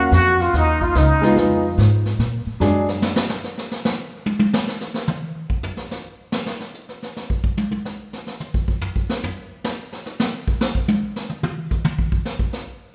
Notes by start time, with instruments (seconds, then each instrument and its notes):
Already playing: upright bass D#2, grand piano C#4 F5, trumpet F#4, muted trumpet F#4
0.12 upright bass F2, muted trumpet F#4, trumpet F#4, snare, hi-hat pedal
0.40 trumpet F4, muted trumpet F4, snare
0.54 upright bass D#2, trumpet D#4, muted trumpet D#4, brush sweep, snare
0.81 trumpet F4, muted trumpet F4, kick
0.95 upright bass C#2, trumpet D#4, muted trumpet D#4, snare, hi-hat pedal
1.22 grand piano G#3 B3 D#4 F4, snare
1.36 upright bass F2, grand piano G#3 B3 D#4 F4, brush sweep, snare
1.78 upright bass G#2, snare, hi-hat pedal
2.06 snare
2.19 upright bass A#2, brush sweep, snare
2.46 muted upright bass stroke
2.60 upright bass F#2, grand piano F#3 G#3 D4 G#4, snare, hi-hat pedal
2.88 snare
3.02 snare
3.16 snare
3.30 snare
3.44 snare, hi-hat pedal
3.58 snare
3.71 snare
3.85 snare
4.26 hi-hat pedal, high tom
4.39 high tom
4.53 snare
4.67 snare
4.81 snare
4.94 snare
5.07 hi-hat pedal, mid tom
5.50 kick
5.63 floor tom
5.77 snare
5.91 snare, hi-hat pedal
6.32 snare
6.46 snare
6.60 snare
6.74 hi-hat pedal
6.89 snare
7.02 snare
7.16 snare
7.30 kick
7.44 kick
7.57 hi-hat pedal, high tom
7.71 high tom
7.85 snare
8.13 snare
8.27 snare
8.40 hi-hat pedal, mid tom
8.54 kick
8.68 kick
8.81 floor tom
8.96 kick
9.09 snare
9.23 floor tom, hi-hat pedal
9.64 snare
9.92 snare
10.05 snare, hi-hat pedal
10.20 snare
10.48 kick
10.61 snare
10.75 kick
10.88 hi-hat pedal, high tom
11.16 snare
11.30 mid tom
11.43 mid tom
11.70 kick, hi-hat pedal
11.85 mid tom
11.99 kick
12.12 kick
12.25 snare
12.39 kick
12.53 snare, hi-hat pedal